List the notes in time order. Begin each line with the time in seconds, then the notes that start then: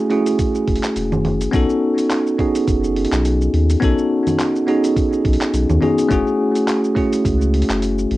Already playing: A3 C#4 E4 F#4 G#4
0.10 A3 C#4 E4 F#4 G#4, open hi-hat
0.26 open hi-hat, shaker
0.39 kick, open hi-hat, shaker
0.55 shaker
0.68 F#1, kick, open hi-hat
0.76 open hi-hat
0.84 clap, open hi-hat, shaker
0.96 E1, open hi-hat, shaker
1.12 low conga, shaker
1.25 F#1, open hi-hat, low conga
1.41 open hi-hat, shaker
1.51 B1 B3 C#4 D#4 F#4, kick, open hi-hat, shaker
1.55 A4
1.70 shaker
1.98 open hi-hat, shaker
2.11 clap, open hi-hat, shaker
2.27 shaker
2.38 B3 C#4 D#4 F#4 G#4, kick, open hi-hat
2.55 open hi-hat, shaker
2.68 F#1, kick, open hi-hat, shaker
2.84 shaker
2.96 open hi-hat
3.05 open hi-hat
3.12 B1, clap, open hi-hat, shaker
3.25 open hi-hat, shaker
3.41 shaker
3.53 D#2, open hi-hat
3.70 open hi-hat, shaker
3.80 B1 B3 C#4 D#4 F#4, kick, open hi-hat, shaker
3.84 A4
3.98 shaker
4.27 open hi-hat, low conga, shaker
4.40 clap, open hi-hat, shaker
4.56 shaker
4.67 B3 C#4 D#4 F#4 G#4, open hi-hat
4.84 open hi-hat, shaker
4.96 kick, open hi-hat, shaker
5.13 shaker
5.25 B1, kick, open hi-hat
5.33 open hi-hat
5.41 clap, open hi-hat, shaker
5.54 B1, open hi-hat, shaker
5.70 D#2, low conga, shaker
5.81 B3 C#4 D#4 F#4 G#4, open hi-hat, low conga
5.98 open hi-hat, shaker
6.09 F#1 A3 C#4 E4 F#4, kick, open hi-hat, shaker
6.13 G#4
6.27 shaker
6.55 open hi-hat, shaker
6.68 clap, open hi-hat, shaker
6.84 shaker
6.95 A3 C#4 E4 F#4 G#4, kick, open hi-hat
7.13 open hi-hat, shaker
7.25 C#2, kick, open hi-hat, shaker
7.41 shaker
7.54 open hi-hat
7.62 open hi-hat
7.69 F#1, clap, open hi-hat, shaker
7.82 open hi-hat, shaker
7.98 shaker
8.11 A1, open hi-hat